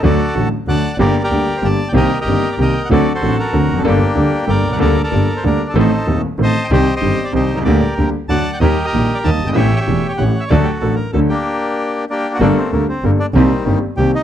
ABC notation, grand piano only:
X:1
M:3/4
L:1/16
Q:1/4=190
K:Gm
V:1 name="Grand piano" clef=bass
[D,,D,^F,A,^F]2 z2 [A,,,A,,D,F,A,F]2 z2 [D,,D,F,A,F]2 z2 | [G,,,G,,D,G,B,G]2 z2 [D,,D,G,B,G]2 z2 [G,,,G,,D,G,B,G]2 z2 | [C,,C,E,B,CG]2 z2 [G,,,G,,E,B,CG]2 z2 [C,,C,E,B,CG]2 z2 | [D,,D,^F,CDA]2 z2 [A,,,A,,F,CDA]2 z2 [D,,D,F,CDA]2 z/2 =E,,/2 =F,,/2 ^F,,/2 |
[G,,,G,,G,B,DA]2 z2 [D,,D,G,B,DA]2 z2 [G,,,G,,G,B,DA]2 z/2 =B,,,/2 C,,/2 ^C,,/2 | [D,,D,G,B,DA]2 z2 [G,,,G,,G,B,DA]2 z2 [D,,D,G,B,DA]2 z2 | [A,,,A,,E,A,CA]2 z2 [E,,,E,,E,A,CA]2 z2 [A,,,A,,E,A,CA]2 z2 | [C,,C,E,G,CG]2 z2 [G,,,G,,E,G,CG]2 z2 [C,,C,E,G,CG]2 z/2 =B,,,/2 C,,/2 ^C,,/2 |
[D,,D,G,B,G]2 z2 [D,,D,G,B,G]2 z2 [D,,D,^F,A,^F]2 z2 | [E,,E,G,B,G]2 z2 [B,,,B,,E,G,B,G]2 z2 [E,,E,G,B,G]2 z/2 ^F,,,/2 G,,,/2 _A,,,/2 | [A,,,A,,=E,A,^CG]2 z2 [=E,,,=E,,E,A,CG]2 z2 [A,,,A,,E,A,CG]2 z2 | [D,,D,^F,A,DA]2 z2 [A,,,A,,F,A,DA]2 z2 [D,,D,F,A,DA]2 z2 |
z12 | [G,,,G,,G,B,DA]2 z2 [D,,D,G,B,DA]2 z2 [G,,,G,,G,B,DA]2 z2 | [C,,C,E,B,CG]2 z2 [G,,,G,,E,B,CG]2 z2 [C,,C,E,B,CG]2 z2 |]